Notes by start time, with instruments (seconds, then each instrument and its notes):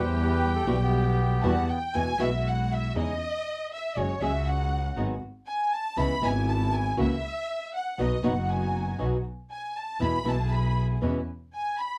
Already playing: double bass E2, string section G3 E4 G4, bandoneon G4 B4, violin section G5
0.04 bandoneon C5
0.29 bandoneon B4
0.55 bandoneon A4
0.67 double bass B1, nylon-string guitar B2 E3 G3 B3 F#4, string section G3 E4 G4
0.82 bandoneon B3 G4
1.42 double bass E2, nylon-string guitar B2 E3 G3 B3 F#4, string section G3 E4 F#4, violin section F#5 A5
1.69 violin section G5
1.94 double bass E2, nylon-string guitar B2 E3 G#3 B3 F#4, string section G#3 E4 F#4, violin section G#5
2.19 double bass B1, nylon-string guitar B2 E3 G#3 B3 F#4, string section G#3 E4 F#4, violin section E5
2.48 violin section F#5
2.73 violin section E5
2.95 double bass E2, nylon-string guitar C#3 G#3 C#4 D#4 G#4, string section C#4 D#4 E4, violin section D#5
3.74 violin section E5
3.96 double bass F#1, nylon-string guitar F#3 G#3 C#4 G#4, string section G#3 C#4 F#4, violin section C#5
4.21 double bass C#2, nylon-string guitar F#3 G#3 C#4 G#4, string section G#3 C#4 F#4, violin section E5
4.47 violin section F#5
4.96 double bass G#1, nylon-string guitar D#3 F#3 B3 D#4 G#4, string section G#3 B3 F#4
5.47 violin section G#5
5.73 violin section A5
5.96 double bass C#2, nylon-string guitar C#3 E3 G#3 B3 E4, string section B3 C#4 E4, violin section B5
6.22 double bass G#1, nylon-string guitar C#3 E3 G#3 B3 E4, string section B3 C#4 E4, violin section G#5
6.50 violin section A5
6.74 violin section G#5
6.97 double bass C#2, nylon-string guitar C#3 E3 A#3 C#4 F#4, string section A#3 E4 F#4, violin section E5
7.76 violin section F#5
7.98 double bass B1, nylon-string guitar B2 F#3 B3 D#4 F#4, string section B3 D#4 F#4, violin section D#5
8.23 double bass F#1, nylon-string guitar B2 F#3 B3 D#4 F#4, string section B3 D#4 F#4, violin section F#5
8.51 violin section G#5
8.98 double bass B1, nylon-string guitar B2 F#3 B3 D#4 F#4, string section B3 D#4 F#4
9.52 violin section G#5
9.78 violin section A5
10.00 double bass E2, nylon-string guitar B2 E3 G#3 B3 E4, string section B3 E4 G#4, violin section B5
10.25 double bass B1, nylon-string guitar B2 E3 G#3 B3 E4, string section B3 E4 G#4
10.29 violin section A5
10.53 violin section B5
11.01 double bass E2, nylon-string guitar B2 E3 G#3 C#4 E4, string section C#4 E4 B4
11.54 violin section G#5
11.79 violin section B5